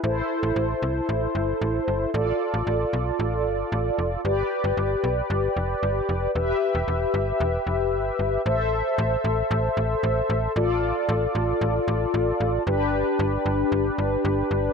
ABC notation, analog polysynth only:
X:1
M:4/4
L:1/8
Q:1/4=114
K:Am
V:1 name="Analog polysynth"
[EAc]8 | [FAd]8 | [GBd]8 | [GBe]8 |
[Ace]8 | [FAd]8 | [DGB]8 |]